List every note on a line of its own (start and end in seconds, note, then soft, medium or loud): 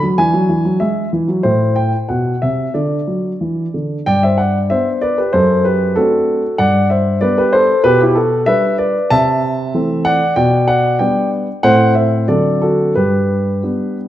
0.00 0.17 F#3 medium
0.00 0.14 D4 soft
0.18 0.33 E3 medium
0.18 1.41 D4 soft
0.18 0.81 G#5 medium
0.34 0.49 F#3 medium
0.49 0.64 E3 medium
0.65 0.80 F#3 medium
0.80 1.04 G#3 medium
0.80 1.09 E5 medium
1.13 1.28 E3 medium
1.28 1.44 F#3 medium
1.43 1.91 A2 medium
1.43 2.70 E4 soft
1.43 1.76 C5 medium
1.76 1.95 G5 medium
2.09 2.33 B2 soft
2.09 2.42 F#5 medium
2.42 2.66 C3 soft
2.42 2.75 E5 medium
2.74 2.98 D3 medium
2.74 4.02 D4 soft
2.74 3.73 D5 medium
3.07 3.31 F#3 soft
3.41 3.65 E3 soft
3.74 3.98 D3 soft
4.06 4.69 G2 medium
4.06 4.22 D5 medium
4.06 4.22 G5 medium
4.23 4.38 C5 medium
4.23 4.39 E5 medium
4.38 4.68 D5 medium
4.38 4.57 F#5 medium
4.70 5.16 B3 soft
4.70 5.16 D4 soft
4.70 5.00 C5 medium
4.70 4.89 E5 medium
5.01 5.17 B4 medium
5.01 5.17 D5 medium
5.18 5.33 G4 medium
5.18 5.33 B4 medium
5.33 5.94 F#2 medium
5.33 5.63 A4 medium
5.33 5.64 C5 medium
5.64 5.94 G4 medium
5.64 5.96 B4 medium
5.96 6.41 A3 soft
5.96 6.42 C4 soft
5.96 6.42 D4 soft
5.96 6.55 F#4 medium
5.96 6.58 A4 medium
6.58 7.19 G2 medium
6.58 6.88 D5 medium
6.58 6.87 F#5 loud
6.90 7.20 C5 medium
6.90 7.18 E5 medium
7.21 7.67 G3 soft
7.21 7.67 B3 soft
7.21 7.67 D4 soft
7.21 7.36 B4 medium
7.21 7.37 D5 medium
7.38 7.53 G4 medium
7.38 7.53 B4 medium
7.53 7.83 A4 medium
7.53 7.81 C5 medium
7.84 8.45 B2 medium
7.84 7.99 G4 medium
7.84 8.00 B4 loud
8.01 8.16 E4 medium
8.01 8.16 G4 medium
8.15 8.45 F#4 medium
8.15 8.47 A4 medium
8.46 8.93 G3 soft
8.46 8.93 D4 soft
8.46 8.77 B4 medium
8.46 8.75 E5 loud
8.78 9.09 B4 medium
8.78 9.11 D5 medium
9.10 9.72 C3 medium
9.10 10.01 E5 medium
9.10 10.05 A5 loud
9.74 10.19 E3 soft
9.74 10.20 A3 soft
9.74 10.20 C4 medium
10.05 10.35 D5 medium
10.05 10.33 F#5 loud
10.36 10.98 B2 medium
10.36 10.66 D5 medium
10.36 10.68 G5 medium
10.68 10.98 D5 medium
10.68 10.96 F#5 medium
10.99 11.46 G3 soft
10.99 11.46 B3 soft
10.99 11.46 D4 medium
10.99 11.30 D5 medium
10.99 11.28 G5 medium
11.63 12.27 A2 medium
11.63 12.25 A3 soft
11.63 12.25 C4 soft
11.63 11.94 C5 medium
11.63 11.92 F#5 loud
11.95 12.25 E5 medium
12.28 12.94 D3 medium
12.28 12.92 F#3 soft
12.28 12.92 C4 soft
12.28 12.92 D4 soft
12.28 12.60 A4 medium
12.28 12.61 D5 medium
12.62 12.94 F#4 medium
12.62 12.92 A4 medium
12.95 13.61 G2 medium
12.95 13.93 G4 medium
12.95 13.96 B4 medium
13.63 14.08 G3 soft
13.63 14.08 B3 soft
13.63 14.08 D4 soft